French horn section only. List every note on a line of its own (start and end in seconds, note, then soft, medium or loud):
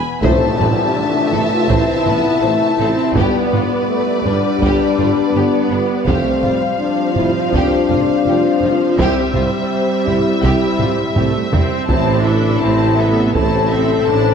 0.00 0.21 B3 medium
0.25 0.97 C4 medium
0.97 1.33 D4 medium
1.33 1.51 E4 medium
1.53 1.70 F4 medium
1.68 3.15 E4 loud
3.18 4.26 B3 medium
4.25 5.71 D4 medium
5.71 6.07 B3 medium
6.07 6.61 C4 medium
6.78 7.15 D4 medium
7.13 7.33 E4 medium
7.32 7.51 F4 medium
7.48 8.95 D4 loud
8.97 10.06 C4 medium
10.06 11.52 E4 medium
11.89 13.31 E4 loud
13.37 14.34 A4 loud